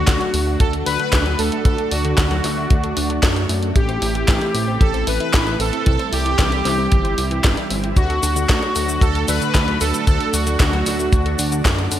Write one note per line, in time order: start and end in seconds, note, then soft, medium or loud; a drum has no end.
0.00 5.82 A3 medium
0.00 3.72 D4 medium
0.00 0.63 F#4 loud
0.00 3.72 F#4 medium
0.07 0.19 D2 medium
0.07 0.19 D3 loud
0.07 kick loud
0.07 snare loud
0.07 clap loud
0.07 closed hi-hat loud
0.20 0.25 F#3 medium
0.20 closed hi-hat soft
0.34 0.57 D2 medium
0.34 0.38 A3 medium
0.34 open hi-hat loud
0.47 0.55 A3 medium
0.59 0.83 D2 medium
0.59 0.68 D3 medium
0.59 0.71 A4 loud
0.59 kick loud
0.59 closed hi-hat loud
0.73 0.78 A4 medium
0.73 closed hi-hat soft
0.86 0.98 D2 medium
0.86 0.98 D4 medium
0.86 1.40 B4 loud
0.86 open hi-hat loud
0.99 1.07 D3 loud
0.99 closed hi-hat soft
1.13 1.36 D2 loud
1.13 1.24 D3 loud
1.13 kick loud
1.13 snare loud
1.13 clap loud
1.13 closed hi-hat loud
1.26 1.30 F#3 medium
1.26 closed hi-hat soft
1.39 1.50 D2 medium
1.39 1.44 A3 medium
1.39 1.63 A4 loud
1.39 open hi-hat loud
1.52 1.60 A3 medium
1.52 closed hi-hat soft
1.65 1.77 D2 medium
1.65 1.73 D3 medium
1.65 1.92 A4 loud
1.65 kick loud
1.65 closed hi-hat loud
1.78 1.83 A4 medium
1.78 closed hi-hat soft
1.91 2.15 D2 medium
1.91 2.03 D4 medium
1.91 3.45 F#4 loud
1.91 open hi-hat loud
2.05 2.13 D3 loud
2.05 closed hi-hat soft
2.18 2.41 D2 loud
2.18 2.30 D3 loud
2.18 kick loud
2.18 snare loud
2.18 clap loud
2.18 closed hi-hat medium
2.31 2.36 F#3 medium
2.31 closed hi-hat soft
2.44 2.67 D2 medium
2.44 2.49 A3 medium
2.44 snare soft
2.44 open hi-hat loud
2.57 2.65 A3 medium
2.70 2.94 D2 medium
2.70 2.78 D3 medium
2.70 kick loud
2.70 closed hi-hat medium
2.84 2.88 A4 medium
2.84 closed hi-hat soft
2.97 3.20 D2 medium
2.97 3.09 D4 medium
2.97 open hi-hat loud
3.10 3.18 D3 loud
3.10 closed hi-hat soft
3.23 3.46 F#2 medium
3.23 3.35 D3 loud
3.23 kick loud
3.23 snare loud
3.23 clap loud
3.23 closed hi-hat medium
3.36 3.41 F#3 medium
3.36 closed hi-hat soft
3.49 3.73 F#2 loud
3.49 3.54 A3 medium
3.49 open hi-hat loud
3.62 3.70 A3 medium
3.62 closed hi-hat soft
3.76 3.99 A1 loud
3.76 3.83 E3 medium
3.76 7.93 C4 medium
3.76 7.93 E4 medium
3.76 4.84 G4 loud
3.76 kick loud
3.76 closed hi-hat medium
3.89 3.93 C5 medium
3.89 closed hi-hat soft
4.02 4.25 A1 medium
4.02 4.14 E4 medium
4.02 open hi-hat loud
4.15 4.23 E3 loud
4.15 closed hi-hat soft
4.28 4.40 A1 medium
4.28 4.40 E3 loud
4.28 kick loud
4.28 snare loud
4.28 clap loud
4.28 closed hi-hat medium
4.41 4.46 A3 medium
4.41 closed hi-hat soft
4.54 4.78 A1 medium
4.54 4.59 C4 medium
4.54 open hi-hat loud
4.68 4.76 C4 medium
4.81 5.04 A1 medium
4.81 4.89 E3 medium
4.81 5.08 A4 loud
4.81 kick loud
4.81 closed hi-hat medium
4.94 4.99 C5 medium
4.94 closed hi-hat soft
5.07 5.19 A1 medium
5.07 5.19 E4 medium
5.07 5.56 B4 loud
5.07 open hi-hat loud
5.20 5.28 E3 loud
5.20 closed hi-hat soft
5.33 5.57 A1 loud
5.33 5.45 E3 loud
5.33 kick loud
5.33 snare loud
5.33 clap loud
5.33 closed hi-hat medium
5.47 5.51 A3 medium
5.47 closed hi-hat soft
5.60 5.71 A1 medium
5.60 5.65 C4 medium
5.60 5.85 A4 loud
5.60 open hi-hat loud
5.73 5.81 C4 medium
5.73 closed hi-hat soft
5.86 5.98 C2 loud
5.86 5.94 E3 medium
5.86 7.95 G3 medium
5.86 6.14 A4 loud
5.86 kick loud
5.86 closed hi-hat medium
5.99 6.04 C5 medium
5.99 closed hi-hat soft
6.12 6.36 C2 medium
6.12 6.24 E4 medium
6.12 7.67 G4 medium
6.12 open hi-hat loud
6.25 6.33 E3 loud
6.25 closed hi-hat soft
6.39 6.62 C2 loud
6.39 6.51 E3 loud
6.39 kick loud
6.39 snare loud
6.39 clap loud
6.39 closed hi-hat medium
6.52 6.57 G3 medium
6.52 closed hi-hat soft
6.65 6.88 C2 medium
6.65 6.70 C4 medium
6.65 snare soft
6.65 open hi-hat loud
6.78 6.86 C4 medium
6.91 7.15 G1 medium
6.91 6.99 E3 medium
6.91 kick loud
6.91 closed hi-hat medium
7.04 7.09 C5 medium
7.04 closed hi-hat soft
7.18 7.41 C2 medium
7.18 7.30 E4 medium
7.18 open hi-hat loud
7.31 7.39 E3 loud
7.31 closed hi-hat soft
7.44 7.56 G1 medium
7.44 7.56 E3 loud
7.44 kick loud
7.44 snare loud
7.44 clap loud
7.44 closed hi-hat medium
7.57 7.62 G3 medium
7.57 closed hi-hat soft
7.70 7.94 G1 loud
7.70 7.75 C4 medium
7.70 open hi-hat loud
7.83 7.91 C4 medium
7.83 closed hi-hat soft
7.96 8.20 D2 loud
7.96 8.05 D3 medium
7.96 12.00 A3 medium
7.96 12.00 D4 medium
7.96 9.05 F#4 loud
7.96 12.00 F#4 medium
7.96 kick loud
7.96 closed hi-hat medium
7.96 cabasa soft
8.10 8.15 A4 medium
8.10 closed hi-hat soft
8.23 8.46 D2 medium
8.23 8.35 D4 medium
8.23 open hi-hat loud
8.23 cabasa medium
8.36 8.44 D3 loud
8.36 closed hi-hat soft
8.36 cabasa soft
8.49 8.61 D2 medium
8.49 8.61 D3 loud
8.49 kick loud
8.49 snare loud
8.49 clap loud
8.49 closed hi-hat medium
8.49 cabasa soft
8.62 8.67 F#3 medium
8.62 closed hi-hat soft
8.76 8.99 D2 medium
8.76 8.80 A3 medium
8.76 open hi-hat loud
8.76 cabasa medium
8.89 8.97 A3 medium
8.89 cabasa soft
9.01 9.25 D2 medium
9.01 9.10 D3 medium
9.01 9.29 A4 loud
9.01 kick loud
9.01 closed hi-hat medium
9.01 cabasa soft
9.15 9.20 A4 medium
9.15 closed hi-hat soft
9.28 9.40 D2 medium
9.28 9.40 D4 medium
9.28 9.82 B4 loud
9.28 open hi-hat loud
9.28 cabasa medium
9.41 9.49 D3 loud
9.41 closed hi-hat soft
9.41 cabasa soft
9.55 9.78 D2 loud
9.55 9.66 D3 loud
9.55 kick loud
9.55 snare loud
9.55 clap loud
9.55 closed hi-hat medium
9.55 cabasa soft
9.68 9.72 F#3 medium
9.68 closed hi-hat soft
9.80 9.93 D2 medium
9.80 9.86 A3 medium
9.80 10.06 A4 loud
9.80 open hi-hat loud
9.80 cabasa medium
9.94 10.02 A3 medium
9.94 closed hi-hat soft
9.94 cabasa soft
10.07 10.19 D2 loud
10.07 10.15 D3 medium
10.07 10.34 A4 loud
10.07 kick loud
10.07 closed hi-hat medium
10.07 cabasa soft
10.20 10.25 A4 medium
10.20 closed hi-hat soft
10.33 10.57 D2 medium
10.33 10.45 D4 medium
10.33 11.87 F#4 loud
10.33 open hi-hat loud
10.33 cabasa medium
10.47 10.55 D3 loud
10.47 closed hi-hat soft
10.47 cabasa soft
10.60 10.83 D2 loud
10.60 10.72 D3 loud
10.60 kick loud
10.60 snare loud
10.60 clap loud
10.60 closed hi-hat medium
10.60 cabasa soft
10.73 10.78 F#3 medium
10.73 closed hi-hat soft
10.86 11.09 D2 medium
10.86 10.91 A3 medium
10.86 snare soft
10.86 open hi-hat loud
10.86 cabasa medium
10.99 11.07 A3 medium
10.99 cabasa soft
11.13 11.36 D2 medium
11.13 11.20 D3 medium
11.13 kick loud
11.13 closed hi-hat medium
11.13 cabasa soft
11.26 11.30 A4 medium
11.26 closed hi-hat soft
11.39 11.62 D2 medium
11.39 11.51 D4 medium
11.39 open hi-hat loud
11.39 cabasa medium
11.52 11.60 D3 loud
11.52 closed hi-hat soft
11.52 cabasa soft
11.65 11.88 F#2 loud
11.65 11.77 D3 loud
11.65 kick loud
11.65 snare loud
11.65 clap loud
11.65 closed hi-hat medium
11.65 cabasa soft
11.78 11.83 F#3 medium
11.78 closed hi-hat soft
11.91 12.00 F#2 loud
11.91 11.96 A3 medium
11.91 open hi-hat loud
11.91 cabasa medium